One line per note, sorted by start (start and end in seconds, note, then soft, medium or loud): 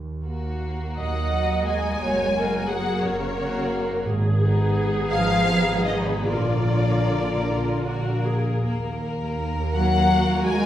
0.00 0.83 D#2 medium
0.24 1.30 A#3 soft
0.24 1.30 F#4 soft
0.96 1.89 D#2 medium
0.96 1.63 F#3 medium
0.96 1.97 D#5 medium
0.96 1.63 F#5 medium
1.32 2.00 A#3 soft
1.32 2.00 F#4 soft
1.67 2.69 G#3 medium
1.67 2.69 G#5 medium
2.00 2.90 F#1 medium
2.00 2.34 A#3 soft
2.00 2.33 F#4 soft
2.00 2.34 C#5 medium
2.35 3.33 A#3 medium
2.35 3.33 F#4 medium
2.35 2.68 A#4 medium
2.69 3.02 F#3 medium
2.69 3.02 G#4 medium
2.69 3.02 F#5 medium
3.01 3.93 F#1 medium
3.01 4.05 C#3 medium
3.01 4.05 A#4 medium
3.01 4.05 C#5 medium
3.36 4.04 A#3 medium
3.36 4.04 F#4 medium
4.05 4.98 G#1 medium
4.05 6.26 G#4 medium
4.40 5.46 B3 medium
4.40 5.45 D#4 medium
5.10 6.11 G#1 medium
5.10 5.82 F3 medium
5.10 5.82 F5 loud
5.48 6.24 B3 medium
5.48 6.24 D#4 medium
5.86 6.05 D#3 medium
5.86 6.05 D#5 medium
6.05 6.25 B2 medium
6.05 6.25 B4 medium
6.24 7.33 A#1 medium
6.24 8.25 D3 medium
6.24 6.65 A#3 medium
6.24 7.39 F4 medium
6.24 6.65 A#4 medium
6.24 8.24 D5 medium
6.66 7.83 A#3 medium
6.66 7.83 A#4 medium
7.47 8.50 A#1 medium
7.47 7.83 F4 medium
7.85 8.61 A#3 medium
7.85 8.25 F#4 medium
7.85 8.62 A#4 soft
8.24 8.63 G#4 medium
8.62 10.66 D#2 medium
8.62 8.80 A#3 medium
8.62 10.66 A#4 medium
8.82 8.98 A#3 medium
9.00 9.17 A#3 medium
9.18 9.36 A#3 medium
9.37 9.54 A#3 medium
9.55 9.72 A#3 medium
9.73 10.42 F#3 medium
9.73 9.91 A#3 medium
9.73 10.66 F#4 medium
9.73 10.42 F#5 loud
9.92 10.09 A#3 medium
10.10 10.26 A#3 medium
10.27 10.45 A#3 medium
10.46 10.66 G#3 loud
10.46 10.62 A#3 medium
10.46 10.66 G#5 loud